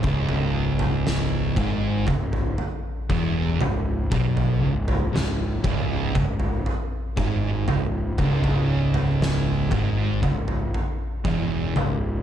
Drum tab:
SD |----o-----------|----o-----------|----o-----------|
FT |oo-o--o-ooo---o-|oo-o--o-ooo---o-|oo-o--o-ooo---o-|
BD |o-----o-o---o---|o-----o-o---o---|o-----o-o---o---|